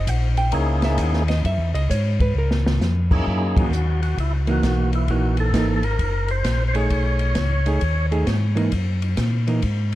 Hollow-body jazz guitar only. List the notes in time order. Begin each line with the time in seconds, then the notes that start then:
0.09 F#5
0.38 G5
0.55 G#5
0.85 E5
1.02 F#5
1.29 D#5
1.46 E5
1.74 D#5
1.90 C#5
2.21 B4
2.38 A#4
3.57 E3 A#3 D#4
4.47 E3 A#3 D#4
5.10 E3 A#3 D#4
5.54 E3 A#3 D#4
6.75 A3 D#4 G#4
7.66 A3 D#4 G#4
8.11 A3 D#4 G#4
8.55 E3 A#3 D#4
9.47 E3 A#3 D#4